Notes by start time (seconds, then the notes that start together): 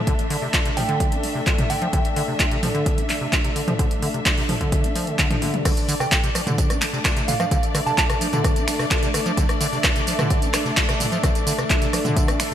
Already playing: A3 D4 A4 D5 E5
0.07 D3, kick, closed hi-hat
0.19 closed hi-hat
0.30 D3, open hi-hat
0.42 C3
0.54 F4, kick, clap, closed hi-hat
0.65 C3, closed hi-hat
0.77 F3 G5, mid tom, open hi-hat
0.89 D3, closed hi-hat
1.00 kick, closed hi-hat
1.12 D4, closed hi-hat
1.23 C3, open hi-hat
1.35 C3
1.47 F4, kick, clap, closed hi-hat
1.58 C3, closed hi-hat, mid tom
1.70 D3 G5, open hi-hat
1.82 F3, closed hi-hat
1.93 D3, kick, closed hi-hat
2.05 closed hi-hat
2.16 D3, open hi-hat
2.28 C3
2.40 F4, kick, clap, closed hi-hat
2.51 C3, closed hi-hat
2.63 F3, mid tom, open hi-hat
2.75 D3, closed hi-hat
2.86 kick, closed hi-hat
2.98 D4, closed hi-hat
3.09 C3, clap, open hi-hat
3.21 C3
3.33 F4, kick, clap, closed hi-hat
3.44 C3, closed hi-hat
3.56 D3, open hi-hat
3.68 F3, closed hi-hat, mid tom
3.79 D3, kick, closed hi-hat
3.91 closed hi-hat
4.02 D3, open hi-hat
4.14 C3, closed hi-hat
4.26 F4, kick, clap, closed hi-hat
4.37 C3, open hi-hat
4.49 F3, mid tom, open hi-hat
4.61 D3, kick, closed hi-hat
4.72 kick, closed hi-hat
4.84 D4, closed hi-hat
4.95 F3, open hi-hat
5.07 D3, closed hi-hat
5.19 D3, kick, clap, closed hi-hat
5.30 F3, closed hi-hat, mid tom
5.42 D3, open hi-hat, high tom
5.54 C3, closed hi-hat, mid tom
5.65 D3 A3 D4 D5, kick, cross-stick, closed hi-hat, crash, tambourine
5.77 closed hi-hat, tambourine
5.88 D3, open hi-hat, tambourine
5.96 A4
6.00 C3 G5, cross-stick, tambourine
6.12 F4, kick, clap, closed hi-hat, tambourine
6.24 C3, closed hi-hat, tambourine
6.35 F3, cross-stick, open hi-hat, tambourine
6.47 D3 E5, closed hi-hat, mid tom, tambourine
6.58 kick, closed hi-hat, tambourine
6.70 D4, cross-stick, closed hi-hat, tambourine
6.81 C3, finger snap, clap, open hi-hat, tambourine
6.93 C3, tambourine
7.05 F4, finger snap, kick, cross-stick, clap, closed hi-hat, tambourine
7.17 C3, closed hi-hat, tambourine
7.28 D3 F5, mid tom, open hi-hat, tambourine
7.40 F3 F5, cross-stick, closed hi-hat, tambourine
7.51 D3, kick, closed hi-hat, tambourine
7.63 closed hi-hat, tambourine
7.75 D3, cross-stick, open hi-hat, tambourine
7.86 C3 A5, tambourine
7.98 F4 A5, kick, clap, closed hi-hat, tambourine
8.10 C3, cross-stick, closed hi-hat, tambourine
8.21 F3, open hi-hat, tambourine
8.33 D3, closed hi-hat, mid tom, tambourine
8.44 kick, cross-stick, closed hi-hat, tambourine
8.56 D4, closed hi-hat, tambourine
8.68 C3, finger snap, open hi-hat, tambourine
8.79 C3, cross-stick, tambourine
8.91 F4, finger snap, kick, clap, closed hi-hat, tambourine
9.03 C3, closed hi-hat, tambourine
9.14 D3, cross-stick, open hi-hat, tambourine
9.26 F3, closed hi-hat, tambourine
9.37 D3, kick, closed hi-hat, tambourine
9.49 cross-stick, closed hi-hat, tambourine
9.61 D3, open hi-hat, tambourine
9.73 C3, tambourine
9.84 F4, kick, cross-stick, clap, closed hi-hat, tambourine
9.96 C3, closed hi-hat, tambourine
10.07 F3, open hi-hat, tambourine
10.19 D3, cross-stick, closed hi-hat, mid tom, tambourine
10.30 kick, closed hi-hat, tambourine
10.42 D4, closed hi-hat, tambourine
10.54 C3, finger snap, cross-stick, clap, open hi-hat, tambourine
10.65 C3, tambourine
10.77 F4, finger snap, kick, clap, closed hi-hat, tambourine
10.89 C3, cross-stick, closed hi-hat, tambourine
11.00 D3, mid tom, open hi-hat, tambourine
11.12 F3, closed hi-hat, tambourine
11.23 D3, kick, cross-stick, closed hi-hat, tambourine
11.35 closed hi-hat, tambourine
11.47 D3, open hi-hat, tambourine
11.58 C3, cross-stick, closed hi-hat, tambourine
11.70 F4, kick, clap, closed hi-hat, tambourine
11.82 C3, closed hi-hat, tambourine
11.93 F3, cross-stick, open hi-hat, tambourine
12.05 D3, closed hi-hat, mid tom, tambourine
12.16 kick, closed hi-hat, tambourine
12.28 D4, cross-stick, closed hi-hat, tambourine
12.40 C3, finger snap, open hi-hat, tambourine